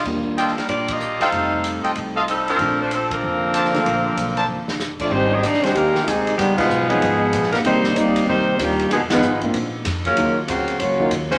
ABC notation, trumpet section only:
X:1
M:4/4
L:1/8
Q:"Swing" 1/4=190
K:Bb
V:1 name="Trumpet section"
z2 [Fdeg] z4 [FAeg] | z3 [FAeg] z [FAef] z2 | z6 [DBca] z | z3 [DBca] z4 |
z8 | z8 | z8 | z8 |
z8 |]